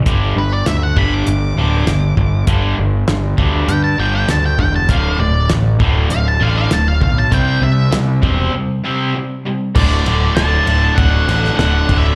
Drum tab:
CC |----------------|----------------|----------------|----------------|
RD |----------------|----------------|----------------|----------------|
HH |x---x---x---x---|x---x---x---x---|x---x---x---x---|x---x-----------|
SD |----o-------o---|----o-------o---|----o-------o---|----o-----------|
BD |o-----o-------o-|o-----o-------o-|o-----o-------o-|o-----o---------|

CC |x---------------|
RD |--x-x-x-x-x-x-x-|
HH |----------------|
SD |----o-----ooo---|
BD |o-------o-----o-|